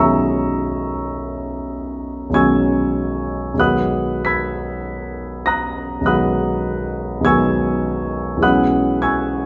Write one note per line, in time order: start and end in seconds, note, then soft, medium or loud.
0.00 2.30 B1 soft
0.00 2.31 D#3 soft
0.00 2.32 G#3 soft
0.00 2.33 C#4 soft
0.00 2.35 F#4 soft
0.00 3.61 D#5 soft
0.00 2.30 E5 medium
0.00 2.35 G#5 medium
0.00 2.30 A#5 medium
0.00 3.60 B5 soft
0.00 2.30 C#6 medium
0.00 3.61 D#6 medium
0.00 2.33 E6 medium
2.30 3.52 B1 soft
2.30 3.53 D#3 soft
2.30 3.53 G#3 soft
2.30 3.54 C#4 soft
2.34 3.55 F#4 soft
2.34 3.55 G#5 medium
2.34 3.54 C#6 medium
2.34 3.55 E6 medium
2.34 3.58 G#6 medium
3.54 6.00 B1 soft
3.54 6.01 D#3 soft
3.54 6.02 G#3 soft
3.54 6.03 B3 soft
3.60 6.04 F#4 soft
3.60 4.22 F#5 medium
3.60 4.22 B5 medium
3.60 4.23 D#6 medium
3.60 4.26 F#6 medium
4.25 5.44 B5 medium
4.25 5.43 E6 medium
4.25 5.44 G#6 medium
4.25 5.47 B6 medium
5.46 6.03 A#5 medium
5.46 6.03 D#6 medium
5.46 6.03 F#6 medium
5.46 6.06 A#6 medium
6.01 7.19 B1 soft
6.01 7.20 D#3 soft
6.01 7.21 G#3 soft
6.05 7.21 B3 soft
6.05 7.22 F#4 soft
6.05 7.22 F#5 medium
6.05 7.22 B5 medium
6.05 7.21 D#6 medium
6.05 7.25 F#6 medium
7.21 8.36 B1 soft
7.21 8.37 D#3 soft
7.21 8.37 G#3 soft
7.21 8.38 B3 soft
7.21 8.42 G#6 medium
7.25 8.39 F#4 soft
7.25 8.39 G#5 medium
7.25 8.39 C#6 medium
7.25 8.39 E6 medium
8.37 9.46 B1 soft
8.37 9.46 E3 soft
8.37 9.46 G#3 soft
8.41 9.46 C#4 soft
8.41 9.46 F#4 soft
8.41 8.98 F#5 medium
8.41 8.98 B5 medium
8.41 8.97 D#6 medium
8.41 9.01 F#6 medium
9.02 9.46 G#5 medium
9.02 9.46 C#6 medium
9.02 9.46 E6 medium
9.02 9.46 G#6 medium